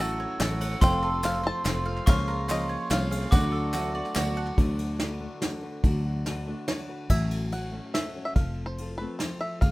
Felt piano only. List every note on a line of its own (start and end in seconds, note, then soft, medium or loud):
0.00 0.78 A1 medium
0.00 0.78 A2 medium
0.00 0.39 F#3 medium
0.00 0.39 C#4 medium
0.00 0.39 E4 medium
0.00 0.40 A4 medium
0.00 0.40 C#5 medium
0.00 0.24 E5 medium
0.39 0.65 F#3 medium
0.39 0.65 C#4 medium
0.39 0.65 E4 medium
0.39 0.65 A4 medium
0.39 0.66 C#5 medium
0.82 2.03 F1 medium
0.82 2.03 F2 medium
0.82 1.07 F3 medium
0.82 1.07 A3 medium
0.82 1.08 C4 medium
0.82 1.08 A4 medium
0.82 1.08 C5 medium
1.23 1.49 F3 medium
1.23 1.49 A3 medium
1.23 1.49 C4 medium
1.23 1.49 A4 medium
1.23 1.49 C5 medium
1.65 1.91 F3 medium
1.65 1.91 A3 medium
1.65 1.91 C4 medium
1.65 1.91 A4 medium
1.65 1.91 C5 medium
2.07 2.32 F3 medium
2.07 2.33 A#3 medium
2.07 2.33 C#4 medium
2.07 2.33 G#4 medium
2.07 2.33 C#5 medium
2.49 2.74 F3 medium
2.49 2.74 A#3 medium
2.49 2.75 C#4 medium
2.49 2.75 G#4 medium
2.49 2.75 C#5 medium
2.91 3.16 F3 medium
2.91 3.16 A#3 medium
2.91 3.16 C#4 medium
2.91 3.16 G#4 medium
2.91 3.16 C#5 medium
3.32 4.54 D2 medium
3.32 4.54 D3 medium
3.32 3.58 F#3 medium
3.32 3.58 A3 medium
3.32 3.58 D4 medium
3.32 3.58 A4 medium
3.32 3.58 D5 medium
3.73 3.99 F#3 medium
3.73 3.99 A3 medium
3.73 3.99 D4 medium
3.73 3.99 A4 medium
3.73 3.99 E5 medium
3.94 4.14 D5 medium
4.16 4.41 F#3 medium
4.16 4.41 A3 medium
4.16 4.41 D4 medium
4.16 4.42 A4 medium
4.16 4.42 D5 medium
4.16 4.36 F#5 medium
4.36 4.56 A5 medium